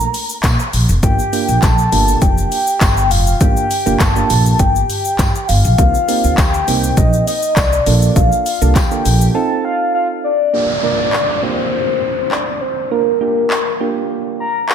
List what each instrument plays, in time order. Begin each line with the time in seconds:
Already playing: soft synth lead A#5
0.00 shaker
0.14 open hi-hat, shaker
0.29 shaker
0.43 upright bass A#2, kick, clap, closed hi-hat, tambourine, shaker
0.59 shaker
0.73 upright bass A#1, open hi-hat, shaker
0.89 upright bass F1, shaker
1.03 upright bass G1, synth keys A#3 D4 F4 G4, soft synth lead G5, kick, closed hi-hat, shaker
1.19 shaker
1.32 synth keys A#3 D4 F4 G4, open hi-hat, shaker
1.48 upright bass A#1, shaker
1.62 upright bass A#1, soft synth lead A5, kick, clap, closed hi-hat, tambourine, shaker
1.78 shaker
1.92 upright bass G1, synth keys A#3 D4 F4 G4, open hi-hat, shaker
2.08 shaker
2.22 upright bass F1, soft synth lead G5, kick, closed hi-hat, shaker
2.38 shaker
2.52 open hi-hat, shaker
2.67 shaker
2.81 upright bass G1, kick, clap, closed hi-hat, tambourine, shaker
2.97 shaker
3.11 upright bass F1, soft synth lead F5, open hi-hat, shaker
3.27 shaker
3.41 upright bass G1, synth keys A#3 D4 F4 G4, soft synth lead G5, kick, closed hi-hat, shaker
3.57 shaker
3.71 open hi-hat, shaker
3.86 upright bass F1, synth keys A#3 D4 F4 G4, shaker
4.00 upright bass G1, soft synth lead A5, kick, clap, closed hi-hat, tambourine, shaker
4.16 synth keys A#3 D4 F4 G4, shaker
4.30 upright bass A#1, open hi-hat, shaker
4.46 shaker
4.59 upright bass G1, soft synth lead G5, kick, closed hi-hat, shaker
4.75 shaker
4.90 open hi-hat, shaker
5.05 shaker
5.19 upright bass G2, kick, clap, closed hi-hat, tambourine, shaker
5.35 shaker
5.48 upright bass G1, soft synth lead F5, open hi-hat, shaker
5.65 upright bass A#1, shaker
5.78 upright bass C2, synth keys A#3 C4 D#4 G4, soft synth lead F5, kick, closed hi-hat, shaker
5.94 shaker
6.08 synth keys A#3 C4 D#4 G4, open hi-hat, shaker
6.24 upright bass D2, shaker
6.37 upright bass D2, soft synth lead G5, kick, clap, closed hi-hat, tambourine, shaker
6.54 shaker
6.67 upright bass C2, synth keys A#3 C4 D#4 G4, open hi-hat, shaker
6.84 shaker
6.97 upright bass A#1, soft synth lead D#5, kick, closed hi-hat, shaker
7.13 shaker
7.27 soft synth lead D#5, open hi-hat, shaker
7.43 shaker
7.56 upright bass C2, soft synth lead D5, kick, clap, closed hi-hat, tambourine, shaker
7.73 shaker
7.86 upright bass A#1, synth keys A#3 D4 F4 A4, open hi-hat, shaker
8.02 shaker
8.16 upright bass A#1, soft synth lead F5, kick, closed hi-hat, shaker
8.32 shaker
8.45 soft synth lead F5, open hi-hat, shaker
8.61 upright bass C2, synth keys A#3 D4 F4 A4, shaker
8.75 soft synth lead G5, kick, clap, closed hi-hat, tambourine, shaker
8.91 synth keys A#3 D4 F4 A4, shaker
9.05 upright bass A#1, open hi-hat, shaker
9.21 shaker
9.35 synth keys C4 D#4 F4 A4, soft synth lead A5
9.65 soft synth lead F5
9.94 soft synth lead F5
10.24 soft synth lead D5
10.53 synth keys A#3 D4 F4 G4, downlifter
10.83 synth keys A#3 D4 F4 A#4, soft synth lead D5
11.13 clap
11.42 synth keys A#3 D4 F4 G4, soft synth lead C5
12.31 soft synth lead D5, clap
12.61 soft synth lead C5
12.91 synth keys A#3 D4 F4 A#4, soft synth lead A#4
13.21 synth keys A#3 D4 F4 G4
13.50 clap
13.80 synth keys A#3 D4 F4 G4
14.40 soft synth lead A#5
14.69 soft synth lead A#5, clap